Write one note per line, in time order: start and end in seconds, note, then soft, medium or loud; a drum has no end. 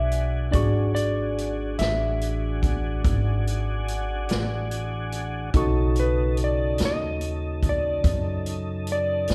0.00 0.50 B1 medium
0.00 0.49 D4 medium
0.00 0.50 D4 medium
0.00 0.50 F#4 medium
0.00 0.50 G#4 medium
0.00 0.51 G#4 medium
0.00 0.51 B4 medium
0.00 0.57 E5 medium
0.12 closed hi-hat medium
0.51 1.75 G#1 medium
0.51 5.48 D4 soft
0.51 5.50 D4 medium
0.51 5.49 F#4 soft
0.51 5.50 F#4 medium
0.51 5.50 G#4 soft
0.51 5.50 G#4 medium
0.51 0.94 D5 medium
0.51 5.50 C#6 medium
0.51 kick loud
0.51 closed hi-hat medium
0.95 1.81 D5 medium
0.95 closed hi-hat medium
1.38 closed hi-hat medium
1.79 3.00 A1 medium
1.79 5.08 E5 medium
1.79 snare medium
1.79 closed hi-hat medium
2.21 closed hi-hat medium
2.63 kick medium
2.63 closed hi-hat medium
3.04 4.25 G#1 medium
3.04 kick loud
3.04 closed hi-hat medium
3.47 closed hi-hat medium
3.88 closed hi-hat medium
4.29 5.51 A1 medium
4.29 snare medium
4.29 closed hi-hat medium
4.71 closed hi-hat medium
5.12 closed hi-hat medium
5.54 6.75 B1 medium
5.54 9.35 C#3 medium
5.54 9.35 D#4 medium
5.54 9.35 F#4 medium
5.54 9.35 A4 medium
5.54 9.35 A4 soft
5.54 9.35 C#6 medium
5.54 kick loud
5.54 closed hi-hat medium
5.96 6.36 B4 medium
5.96 closed hi-hat medium
6.37 closed hi-hat medium
6.44 6.80 D5 medium
6.78 8.00 D#2 medium
6.78 snare loud
6.78 closed hi-hat medium
6.85 7.68 D#5 medium
7.21 closed hi-hat medium
7.63 kick medium
7.63 closed hi-hat medium
7.69 8.45 D5 medium
8.04 9.25 F#2 medium
8.04 kick loud
8.04 closed hi-hat medium
8.46 closed hi-hat medium
8.87 closed hi-hat medium
8.92 9.35 D5 loud
9.28 9.35 A2 medium
9.28 snare medium
9.28 closed hi-hat medium